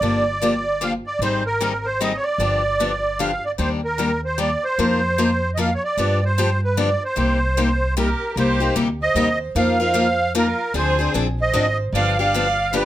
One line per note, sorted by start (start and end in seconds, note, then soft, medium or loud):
0.00 0.96 G1 medium
0.00 0.23 D3 medium
0.00 0.23 F3 medium
0.00 0.23 A#3 medium
0.00 0.23 D4 medium
0.00 0.23 G4 medium
0.00 0.84 D5 medium
0.42 0.52 D3 medium
0.42 0.53 F3 medium
0.42 0.53 A#3 medium
0.42 0.53 D4 medium
0.42 0.53 G4 medium
0.81 0.92 D3 medium
0.81 0.92 F3 medium
0.81 0.92 A#3 medium
0.81 0.92 D4 medium
0.81 0.92 G4 medium
0.81 0.93 F5 medium
1.07 1.20 D5 medium
1.19 2.15 G#1 medium
1.19 1.42 D#3 medium
1.19 1.42 G3 medium
1.19 1.43 C4 medium
1.19 1.42 D#4 medium
1.19 1.42 G#4 medium
1.19 1.44 C5 medium
1.46 1.86 A#4 medium
1.61 1.71 D#3 medium
1.61 1.72 G3 medium
1.61 1.72 C4 medium
1.61 1.72 D#4 medium
1.61 1.72 G#4 medium
1.85 2.01 C5 medium
2.01 2.11 D#3 medium
2.01 2.11 G3 medium
2.01 2.12 C4 medium
2.01 2.12 D#4 medium
2.01 2.12 G#4 medium
2.01 2.17 D#5 medium
2.16 2.24 C#5 medium
2.23 3.21 D5 medium
2.38 3.34 G1 medium
2.38 2.61 D3 medium
2.38 2.61 F3 medium
2.38 2.61 B3 medium
2.38 2.61 D4 medium
2.38 2.61 G4 medium
2.80 2.91 D3 medium
2.80 2.91 F3 medium
2.80 2.91 B3 medium
2.80 2.91 D4 medium
2.80 2.91 G4 medium
3.19 3.30 D3 medium
3.19 3.31 F3 medium
3.19 3.31 B3 medium
3.19 3.31 D4 medium
3.19 3.31 G4 medium
3.19 3.45 F5 medium
3.45 3.52 D5 medium
3.58 4.54 D#2 medium
3.58 3.79 D#3 medium
3.58 3.80 G3 medium
3.58 3.80 A#3 medium
3.58 3.80 D4 medium
3.58 3.80 G4 medium
3.58 3.70 C5 medium
3.84 4.21 A#4 medium
3.98 4.09 D#3 medium
3.98 4.10 G3 medium
3.98 4.10 A#3 medium
3.98 4.10 D4 medium
3.98 4.10 G4 medium
4.25 4.38 C5 medium
4.38 4.49 D#3 medium
4.38 4.49 G3 medium
4.38 4.50 A#3 medium
4.38 4.50 D4 medium
4.38 4.50 G4 medium
4.38 4.64 D5 medium
4.64 5.51 C5 medium
4.78 5.74 F2 medium
4.78 5.00 F3 medium
4.78 4.99 A#3 medium
4.78 5.00 D#4 medium
4.78 5.00 F4 medium
4.78 5.00 A#4 medium
5.18 5.29 F3 medium
5.18 5.29 A#3 medium
5.18 5.30 D#4 medium
5.18 5.29 F4 medium
5.18 5.30 A#4 medium
5.55 5.69 F3 medium
5.55 5.69 A#3 medium
5.55 5.69 D#4 medium
5.55 5.69 F4 medium
5.55 5.58 D#5 medium
5.59 5.70 A#4 medium
5.59 5.73 F5 medium
5.75 5.83 C#5 medium
5.84 6.24 D5 medium
5.97 6.93 G2 medium
5.97 6.19 D3 medium
5.97 6.19 F3 medium
5.97 6.19 B3 medium
5.97 6.19 D4 medium
5.97 6.19 G4 medium
6.25 6.61 C5 medium
6.38 6.49 D3 medium
6.38 6.49 F3 medium
6.38 6.49 B3 medium
6.38 6.49 D4 medium
6.38 6.49 G4 medium
6.64 6.79 B4 medium
6.77 6.88 D3 medium
6.77 6.88 F3 medium
6.77 6.89 B3 medium
6.77 6.89 D4 medium
6.77 6.89 G4 medium
6.77 7.03 D5 medium
7.05 7.94 C5 medium
7.16 8.13 C2 medium
7.16 7.38 C3 medium
7.16 7.38 G3 medium
7.16 7.38 A#3 medium
7.16 7.38 D#4 medium
7.16 7.38 G4 medium
7.57 7.68 C3 medium
7.57 7.68 G3 medium
7.57 7.68 A#3 medium
7.57 7.69 D#4 medium
7.57 7.69 G4 medium
7.97 8.08 C3 medium
7.97 8.08 G3 medium
7.97 8.08 A#3 medium
7.97 8.08 D#4 medium
7.97 8.08 G4 medium
7.97 8.29 G4 medium
7.97 8.31 A#4 medium
8.31 8.36 G4 medium
8.31 8.37 A#4 medium
8.36 8.68 C2 medium
8.36 8.58 C3 medium
8.36 8.58 G3 medium
8.36 8.58 A#3 medium
8.36 8.58 D#4 medium
8.36 8.74 G4 medium
8.36 8.58 G4 medium
8.36 8.75 C5 medium
8.60 8.75 A#3 soft
8.60 8.75 D#4 medium
8.60 8.75 G4 medium
8.75 9.10 D2 medium
8.75 8.87 C3 medium
8.75 8.87 G3 medium
8.75 8.87 A#3 medium
8.75 8.88 D#4 medium
8.75 8.88 G4 medium
9.02 9.38 C5 medium
9.02 9.39 D#5 loud
9.15 9.49 D#2 medium
9.15 9.27 C3 medium
9.15 9.27 G3 medium
9.15 9.27 A#3 medium
9.15 9.27 D#4 medium
9.15 9.28 G4 medium
9.55 10.51 F2 medium
9.55 9.77 F3 medium
9.55 9.77 A#3 medium
9.55 9.77 D#4 medium
9.55 9.77 F4 medium
9.55 9.77 A#4 medium
9.55 9.79 C5 medium
9.55 9.80 F5 medium
9.80 9.93 D#4 soft
9.80 9.93 F4 medium
9.80 9.94 A#4 medium
9.80 10.32 C5 medium
9.80 10.32 F5 loud
9.94 10.06 F3 medium
9.94 10.06 A#3 medium
9.94 10.06 D#4 medium
9.94 10.06 F4 medium
9.94 10.07 A#4 medium
10.35 10.46 F3 medium
10.35 10.46 A#3 medium
10.35 10.46 D#4 medium
10.35 10.46 F4 medium
10.35 10.74 F4 medium
10.35 10.47 A#4 medium
10.35 10.74 A#4 medium
10.74 11.06 D2 medium
10.74 10.96 D3 medium
10.74 10.96 F3 medium
10.74 10.96 C4 medium
10.74 10.96 D4 medium
10.74 10.96 G#4 medium
10.74 11.13 G#4 medium
10.74 11.13 C5 medium
10.99 11.14 C4 soft
10.99 11.14 D4 medium
10.99 11.14 G#4 medium
11.14 11.48 A#1 medium
11.14 11.26 D3 medium
11.14 11.26 F3 medium
11.14 11.26 C4 medium
11.14 11.26 D4 medium
11.14 11.26 G#4 medium
11.40 11.77 C5 medium
11.40 11.77 D#5 loud
11.53 11.88 G#1 medium
11.53 11.65 D3 medium
11.53 11.65 F3 medium
11.53 11.65 C4 medium
11.53 11.66 D4 medium
11.53 11.66 G#4 medium
11.93 12.85 G1 medium
11.93 12.16 D3 medium
11.93 12.16 F3 medium
11.93 12.16 B3 medium
11.93 12.16 D4 medium
11.93 12.16 G4 medium
11.93 12.17 D5 medium
11.93 12.18 F5 medium
12.19 12.34 B3 soft
12.19 12.34 D4 soft
12.19 12.34 G4 medium
12.19 12.70 D5 medium
12.19 12.76 F5 loud
12.34 12.45 D3 medium
12.34 12.45 F3 medium
12.34 12.46 B3 medium
12.34 12.46 D4 medium
12.34 12.46 G4 medium
12.73 12.85 D3 medium
12.73 12.84 F3 medium
12.73 12.85 B3 medium
12.73 12.85 D4 medium
12.73 12.85 G4 medium
12.73 12.85 B4 medium